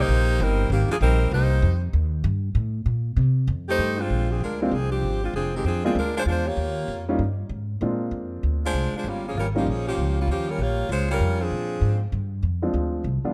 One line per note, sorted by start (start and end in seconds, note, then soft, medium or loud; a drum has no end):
0.00 0.40 A#3 medium
0.00 0.40 D#4 loud
0.00 0.40 G4 medium
0.00 0.40 C5 loud
0.08 0.38 A#1 medium
0.39 0.69 G1 loud
0.39 0.71 G3 medium
0.39 0.70 C4 medium
0.39 0.71 D#4 medium
0.39 0.71 A#4 loud
0.70 0.88 G#1 medium
0.70 0.89 D#3 medium
0.70 0.89 A#3 medium
0.70 0.89 C4 medium
0.70 0.89 G4 medium
0.89 0.96 F3 medium
0.89 0.96 A#3 medium
0.89 0.96 D4 medium
0.89 0.96 G#4 medium
0.89 muted upright bass stroke soft
1.01 1.31 A#1 loud
1.01 1.30 G3 medium
1.01 1.30 C4 medium
1.01 1.30 D#4 medium
1.01 1.30 A#4 loud
1.31 1.62 C2 loud
1.31 1.61 A#3 medium
1.31 1.79 D#4 medium
1.31 1.79 G4 medium
1.31 1.79 C5 medium
1.62 1.92 F2 loud
1.93 2.23 D#2 loud
2.24 2.54 G2 loud
2.55 2.85 A2 medium
2.86 3.16 A#2 medium
3.17 3.47 C3 medium
3.47 3.78 F2 loud
3.69 3.97 A3 medium
3.69 3.97 D#4 medium
3.69 3.97 G4 medium
3.69 3.97 C5 loud
3.79 4.09 G2 medium
3.98 4.30 G#3 medium
3.98 4.29 C4 medium
3.98 4.28 D4 medium
3.98 4.30 F4 medium
4.10 4.40 A#1 medium
4.29 4.41 F3 medium
4.29 4.41 C4 medium
4.29 4.41 D4 medium
4.29 4.41 G#4 medium
4.40 4.71 D2 medium
4.40 4.59 G#3 medium
4.40 4.60 D4 medium
4.40 4.60 F4 medium
4.40 4.60 A#4 medium
4.60 4.72 D#3 medium
4.60 4.71 G#3 medium
4.60 4.72 A#3 medium
4.60 4.71 C4 medium
4.60 4.72 C4 medium
4.60 4.72 D4 medium
4.60 4.72 F4 medium
4.60 4.71 G4 medium
4.71 5.01 C2 medium
4.71 4.89 F3 medium
4.71 4.88 C4 medium
4.71 4.88 D4 medium
4.71 4.91 G#4 medium
4.90 5.19 F3 medium
4.90 5.19 C4 medium
4.90 5.19 D4 medium
4.90 5.19 G4 medium
5.03 5.33 G#1 medium
5.22 5.33 G#3 medium
5.22 5.33 C4 medium
5.22 5.33 D4 medium
5.22 5.33 F4 medium
5.33 5.63 F1 medium
5.33 5.52 F3 medium
5.33 5.53 C4 medium
5.33 5.52 D4 medium
5.33 5.52 G#4 medium
5.54 5.64 D#3 medium
5.54 5.65 G#3 medium
5.54 5.65 C4 medium
5.54 5.64 G4 medium
5.64 5.94 F2 medium
5.64 5.83 F3 medium
5.64 5.83 C4 medium
5.64 5.83 D4 medium
5.64 5.83 G#4 medium
5.84 5.95 F3 medium
5.84 5.95 G#3 medium
5.84 5.95 A#3 medium
5.84 5.95 C4 medium
5.84 5.95 D4 medium
5.84 5.95 F4 medium
5.84 5.95 G#4 medium
5.95 6.25 D2 medium
5.95 6.14 G#3 medium
5.95 6.15 D4 medium
5.95 6.15 F4 medium
5.95 6.14 A#4 medium
6.17 6.21 G#3 medium
6.17 6.21 D4 medium
6.17 6.22 F4 medium
6.17 6.22 C5 medium
6.26 6.56 E2 medium
6.26 6.45 G#3 medium
6.26 6.45 D4 medium
6.26 6.45 F4 medium
6.26 6.45 C5 medium
6.46 7.08 A#3 medium
6.46 7.08 F4 medium
6.46 7.08 G4 medium
6.46 7.08 C#5 loud
6.57 6.87 D#2 medium
6.88 7.18 F2 medium
7.09 7.18 G3 medium
7.09 7.19 A#3 medium
7.09 7.19 C#4 medium
7.09 7.19 D#4 medium
7.09 7.19 F4 medium
7.19 7.49 G2 medium
7.49 7.80 G#2 medium
7.81 8.11 A#2 medium
7.81 8.67 G#3 medium
7.81 8.67 A#3 soft
7.81 8.67 C4 medium
7.81 8.68 D4 soft
7.81 8.68 F4 medium
8.11 8.41 F2 medium
8.43 8.72 D2 medium
8.65 8.92 G#3 medium
8.65 8.92 D4 medium
8.65 8.92 F4 medium
8.65 8.92 C5 medium
8.73 8.91 C2 medium
8.93 9.06 G#3 medium
8.93 9.05 D4 medium
8.93 9.05 F4 medium
8.93 9.05 C5 medium
8.93 muted upright bass stroke soft
9.04 9.34 G1 medium
9.04 9.26 G3 medium
9.04 9.26 A#3 medium
9.04 9.26 F4 medium
9.08 9.26 C#4 medium
9.27 9.36 F3 medium
9.27 9.36 A#3 medium
9.27 9.36 C#4 medium
9.27 9.36 G#4 medium
9.35 9.65 G#1 medium
9.35 9.46 G3 medium
9.35 9.46 C#4 medium
9.35 9.46 F4 medium
9.35 9.46 A#4 medium
9.55 9.66 F3 medium
9.55 9.65 G3 medium
9.55 9.65 A#3 medium
9.55 9.66 A#3 medium
9.55 9.65 C#4 medium
9.55 9.67 C#4 medium
9.55 9.65 D#4 medium
9.55 9.66 F4 medium
9.55 9.67 G4 medium
9.66 9.96 A#1 medium
9.66 9.86 F3 medium
9.66 9.87 A#3 medium
9.66 9.87 C#4 medium
9.66 9.87 G#4 medium
9.87 10.15 F3 medium
9.87 10.16 A#3 medium
9.87 10.15 C#4 medium
9.87 10.15 G4 medium
9.97 10.27 C#2 medium
10.19 10.29 G3 medium
10.19 10.29 A#3 medium
10.19 10.29 C#4 medium
10.19 10.29 F4 medium
10.27 10.58 D#2 medium
10.27 10.47 F3 medium
10.27 10.47 A#3 medium
10.27 10.47 C#4 medium
10.27 10.47 G4 medium
10.48 10.59 G3 medium
10.48 10.59 C#4 medium
10.48 10.59 F4 medium
10.48 10.59 A#4 medium
10.58 10.88 A#1 medium
10.58 10.91 A#3 medium
10.58 10.90 F4 medium
10.58 10.91 G4 medium
10.58 10.91 C#5 loud
10.89 11.19 C#2 medium
10.89 11.08 G#3 medium
10.89 11.08 C#4 medium
10.89 11.08 F4 medium
10.89 11.08 C5 medium
11.10 11.38 G3 medium
11.10 11.38 C#4 medium
11.10 11.38 F4 medium
11.10 11.39 A#4 loud
11.20 11.50 F2 medium
11.40 12.02 F3 medium
11.40 12.02 C4 medium
11.40 12.02 D4 medium
11.40 12.02 G#4 medium
11.51 11.81 A#2 medium
11.81 12.12 G#2 medium
12.12 12.42 G2 medium
12.43 12.73 F2 medium
12.62 13.03 F3 medium
12.62 13.03 G#3 medium
12.62 13.03 C4 medium
12.62 13.03 D4 soft
12.62 13.03 F4 medium
12.74 13.04 D2 medium
13.04 13.23 C2 medium
13.24 13.34 F3 medium
13.24 13.34 G3 medium
13.24 13.34 B3 medium
13.24 13.34 D4 soft
13.24 13.34 F4 medium
13.24 muted upright bass stroke soft